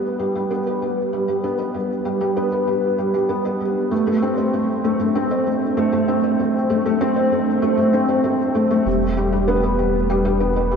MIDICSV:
0, 0, Header, 1, 3, 480
1, 0, Start_track
1, 0, Key_signature, 0, "minor"
1, 0, Tempo, 618557
1, 1117, Time_signature, 4, 2, 24, 8
1, 8352, End_track
2, 0, Start_track
2, 0, Title_t, "Felt piano"
2, 0, Program_c, 0, 0
2, 0, Control_c, 0, 64, 127
2, 0, Note_on_c, 0, 55, 68
2, 0, Note_on_c, 0, 59, 86
2, 0, Note_on_c, 0, 71, 61
2, 151, Note_off_c, 0, 55, 0
2, 151, Note_on_c, 0, 55, 84
2, 263, Note_off_c, 0, 55, 0
2, 275, Note_on_c, 0, 55, 94
2, 390, Note_off_c, 0, 55, 0
2, 393, Note_off_c, 0, 59, 0
2, 393, Note_on_c, 0, 59, 77
2, 463, Note_off_c, 0, 59, 0
2, 517, Note_off_c, 0, 71, 0
2, 517, Note_on_c, 0, 71, 64
2, 631, Note_off_c, 0, 71, 0
2, 636, Note_on_c, 0, 55, 74
2, 751, Note_off_c, 0, 55, 0
2, 876, Note_on_c, 0, 55, 85
2, 982, Note_off_c, 0, 55, 0
2, 994, Note_on_c, 0, 55, 84
2, 1110, Note_off_c, 0, 55, 0
2, 1115, Note_on_c, 0, 59, 86
2, 1185, Note_off_c, 0, 59, 0
2, 1231, Note_on_c, 0, 71, 65
2, 1348, Note_off_c, 0, 71, 0
2, 1352, Note_on_c, 0, 55, 66
2, 1469, Note_off_c, 0, 55, 0
2, 1592, Note_on_c, 0, 55, 97
2, 1701, Note_off_c, 0, 55, 0
2, 1713, Note_on_c, 0, 55, 95
2, 1829, Note_off_c, 0, 55, 0
2, 1837, Note_on_c, 0, 59, 97
2, 1905, Note_off_c, 0, 59, 0
2, 1955, Note_on_c, 0, 71, 69
2, 2070, Note_off_c, 0, 71, 0
2, 2076, Note_on_c, 0, 55, 77
2, 2191, Note_off_c, 0, 55, 0
2, 2316, Note_on_c, 0, 55, 81
2, 2425, Note_off_c, 0, 55, 0
2, 2437, Note_on_c, 0, 55, 91
2, 2551, Note_off_c, 0, 55, 0
2, 2554, Note_on_c, 0, 59, 97
2, 2624, Note_off_c, 0, 59, 0
2, 2677, Note_on_c, 0, 71, 74
2, 2791, Note_off_c, 0, 71, 0
2, 2798, Note_on_c, 0, 55, 67
2, 2912, Note_off_c, 0, 55, 0
2, 3036, Note_on_c, 0, 57, 97
2, 3047, Control_c, 0, 64, 0
2, 3146, Note_off_c, 0, 57, 0
2, 3158, Note_on_c, 0, 57, 96
2, 3182, Control_c, 0, 64, 127
2, 3272, Note_off_c, 0, 57, 0
2, 3278, Note_on_c, 0, 60, 90
2, 3346, Note_off_c, 0, 60, 0
2, 3395, Note_on_c, 0, 72, 69
2, 3510, Note_off_c, 0, 72, 0
2, 3518, Note_on_c, 0, 57, 80
2, 3632, Note_off_c, 0, 57, 0
2, 3758, Note_on_c, 0, 57, 94
2, 3865, Note_off_c, 0, 57, 0
2, 3877, Note_on_c, 0, 57, 96
2, 3991, Note_off_c, 0, 57, 0
2, 3999, Note_on_c, 0, 60, 94
2, 4066, Note_off_c, 0, 60, 0
2, 4121, Note_on_c, 0, 72, 74
2, 4233, Note_off_c, 0, 72, 0
2, 4241, Note_on_c, 0, 57, 68
2, 4353, Note_off_c, 0, 57, 0
2, 4478, Note_on_c, 0, 57, 99
2, 4586, Note_off_c, 0, 57, 0
2, 4597, Note_on_c, 0, 57, 105
2, 4711, Note_off_c, 0, 57, 0
2, 4718, Note_on_c, 0, 60, 91
2, 4786, Note_off_c, 0, 60, 0
2, 4839, Note_on_c, 0, 72, 72
2, 4952, Note_off_c, 0, 72, 0
2, 4961, Note_on_c, 0, 57, 82
2, 5073, Note_off_c, 0, 57, 0
2, 5198, Note_on_c, 0, 57, 95
2, 5309, Note_off_c, 0, 57, 0
2, 5321, Note_on_c, 0, 57, 99
2, 5433, Note_off_c, 0, 57, 0
2, 5439, Note_on_c, 0, 60, 104
2, 5506, Note_off_c, 0, 60, 0
2, 5556, Note_on_c, 0, 72, 77
2, 5671, Note_off_c, 0, 72, 0
2, 5677, Note_on_c, 0, 57, 76
2, 5791, Note_off_c, 0, 57, 0
2, 5914, Note_on_c, 0, 57, 101
2, 6020, Note_off_c, 0, 57, 0
2, 6032, Note_on_c, 0, 57, 95
2, 6149, Note_off_c, 0, 57, 0
2, 6154, Note_on_c, 0, 60, 96
2, 6224, Note_off_c, 0, 60, 0
2, 6274, Note_on_c, 0, 72, 74
2, 6390, Note_off_c, 0, 72, 0
2, 6393, Note_on_c, 0, 57, 80
2, 6509, Note_off_c, 0, 57, 0
2, 6634, Note_on_c, 0, 57, 97
2, 6744, Note_off_c, 0, 57, 0
2, 6756, Note_on_c, 0, 57, 101
2, 6871, Note_off_c, 0, 57, 0
2, 6876, Note_on_c, 0, 55, 78
2, 6887, Control_c, 0, 64, 0
2, 6991, Note_off_c, 0, 55, 0
2, 7017, Control_c, 0, 64, 127
2, 7116, Note_on_c, 0, 55, 97
2, 7224, Note_off_c, 0, 55, 0
2, 7236, Note_on_c, 0, 55, 99
2, 7351, Note_off_c, 0, 55, 0
2, 7355, Note_on_c, 0, 59, 104
2, 7424, Note_off_c, 0, 59, 0
2, 7475, Note_on_c, 0, 71, 71
2, 7590, Note_off_c, 0, 71, 0
2, 7595, Note_on_c, 0, 55, 77
2, 7710, Note_off_c, 0, 55, 0
2, 7835, Note_on_c, 0, 55, 104
2, 7942, Note_off_c, 0, 55, 0
2, 7953, Note_on_c, 0, 55, 105
2, 8069, Note_off_c, 0, 55, 0
2, 8073, Note_on_c, 0, 59, 90
2, 8143, Note_off_c, 0, 59, 0
2, 8195, Note_on_c, 0, 71, 73
2, 8310, Note_off_c, 0, 71, 0
2, 8314, Note_on_c, 0, 55, 90
2, 8352, Note_off_c, 0, 55, 0
2, 8352, End_track
3, 0, Start_track
3, 0, Title_t, "Sub bass"
3, 0, Program_c, 1, 38
3, 6875, Note_on_c, 1, 28, 86
3, 8352, Note_off_c, 1, 28, 0
3, 8352, End_track
0, 0, End_of_file